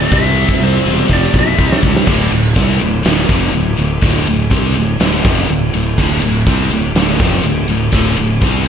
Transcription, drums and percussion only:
0.12 kick loud
0.12 crash medium
0.37 crash medium
0.49 kick medium
0.61 crash medium
0.85 crash medium
1.10 kick medium
1.34 kick medium
1.59 kick medium
1.72 snare medium
1.83 kick medium
1.97 snare loud
2.07 kick loud
2.07 crash loud
2.32 ride medium
2.56 kick loud
2.56 ride loud
2.81 ride medium
3.05 snare loud
3.05 ride loud
3.29 kick loud
3.29 ride medium
3.54 ride loud
3.78 ride medium
4.02 kick loud
4.02 ride medium
4.27 ride medium
4.51 kick loud
4.51 ride medium
4.75 ride medium
5.00 snare loud
5.00 ride loud
5.25 kick loud
5.25 ride medium
5.39 snare soft
5.49 ride medium
5.74 ride medium
5.98 kick loud
5.98 crash medium
6.22 ride medium
6.47 kick loud
6.47 ride loud
6.71 ride medium
6.95 snare loud
6.95 ride loud
7.20 kick loud
7.20 ride medium
7.33 snare soft
7.43 ride loud
7.68 ride medium
7.92 kick loud
7.92 ride loud
8.17 ride medium
8.41 kick loud
8.41 ride medium

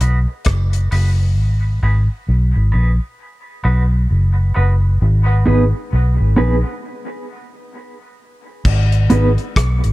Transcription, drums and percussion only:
0.01 closed hi-hat medium
0.45 kick loud
0.45 cross-stick loud
0.45 closed hi-hat medium
0.73 closed hi-hat medium
0.92 open hi-hat medium
8.65 kick loud
8.65 crash medium
8.92 closed hi-hat soft
9.10 closed hi-hat medium
9.38 closed hi-hat soft
9.56 kick loud
9.56 cross-stick loud
9.56 closed hi-hat medium
9.84 closed hi-hat medium

